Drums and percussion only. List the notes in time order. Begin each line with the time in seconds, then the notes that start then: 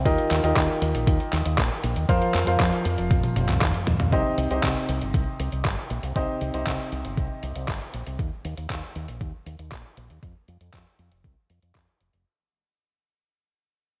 0.06 kick, closed hi-hat, tambourine
0.18 closed hi-hat, tambourine
0.31 clap, closed hi-hat, tambourine
0.44 closed hi-hat, tambourine
0.56 kick, clap, closed hi-hat, tambourine
0.69 tambourine
0.82 closed hi-hat, tambourine
0.95 closed hi-hat, tambourine
1.07 kick, closed hi-hat, tambourine
1.20 closed hi-hat, tambourine
1.33 clap, closed hi-hat, tambourine
1.46 closed hi-hat, tambourine
1.58 kick, clap, closed hi-hat, tambourine
1.71 tambourine
1.84 closed hi-hat, tambourine
1.96 closed hi-hat, tambourine
2.09 kick, closed hi-hat, tambourine
2.22 closed hi-hat, tambourine
2.34 clap, closed hi-hat, tambourine
2.47 closed hi-hat, tambourine
2.60 kick, clap, closed hi-hat, tambourine
2.73 closed hi-hat, tambourine
2.85 closed hi-hat, tambourine
2.98 closed hi-hat, tambourine
3.11 kick, closed hi-hat, high tom, tambourine
3.23 closed hi-hat, high tom, tambourine
3.36 closed hi-hat, high tom, tambourine
3.49 clap, closed hi-hat, mid tom, tambourine
3.62 kick, clap, closed hi-hat, mid tom, tambourine
3.74 closed hi-hat, tambourine
3.87 closed hi-hat, mid tom, tambourine
4.00 closed hi-hat, mid tom, tambourine
4.12 kick, closed hi-hat
4.38 closed hi-hat
4.51 closed hi-hat
4.63 kick, clap, closed hi-hat
4.89 closed hi-hat
5.01 closed hi-hat
5.14 kick, closed hi-hat
5.40 closed hi-hat
5.52 closed hi-hat
5.65 kick, clap, closed hi-hat
5.90 closed hi-hat
6.03 closed hi-hat
6.16 kick, closed hi-hat
6.41 closed hi-hat
6.54 closed hi-hat
6.67 kick, clap, closed hi-hat
6.79 closed hi-hat
6.92 closed hi-hat
7.05 closed hi-hat
7.17 kick, closed hi-hat
7.43 closed hi-hat
7.56 closed hi-hat
7.68 kick, clap, closed hi-hat
7.81 closed hi-hat
7.94 closed hi-hat
8.06 closed hi-hat
8.19 kick, closed hi-hat
8.45 closed hi-hat
8.57 closed hi-hat
8.70 kick, clap, closed hi-hat
8.96 closed hi-hat
9.08 closed hi-hat
9.21 kick, closed hi-hat
9.46 closed hi-hat
9.59 closed hi-hat
9.72 kick, clap, closed hi-hat
9.97 closed hi-hat
10.10 closed hi-hat
10.23 kick, closed hi-hat
10.48 closed hi-hat
10.61 closed hi-hat
10.74 kick, clap, closed hi-hat
10.86 closed hi-hat
10.99 closed hi-hat
11.12 closed hi-hat
11.24 kick, closed hi-hat
11.50 closed hi-hat
11.62 closed hi-hat
11.75 kick, clap, closed hi-hat
11.88 closed hi-hat
12.01 closed hi-hat
12.13 closed hi-hat